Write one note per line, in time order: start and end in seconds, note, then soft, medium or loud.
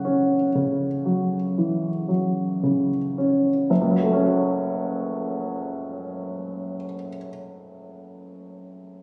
0.00 0.48 F#2 soft
0.00 0.34 C#3 soft
0.00 1.58 E3 soft
0.00 1.06 F#3 soft
0.00 2.89 F#5 soft
0.05 0.86 C#4 soft
0.55 1.36 C#3 soft
1.06 1.87 F#3 soft
1.58 2.09 E3 soft
2.08 2.96 F#3 soft
2.63 3.50 C#3 soft
3.18 3.69 C#4 soft
3.70 6.74 F#1 soft
3.81 6.85 C#2 soft
3.91 6.95 F#3 soft
4.02 7.06 A3 soft
4.13 7.17 C#4 soft
4.24 7.28 F#4 soft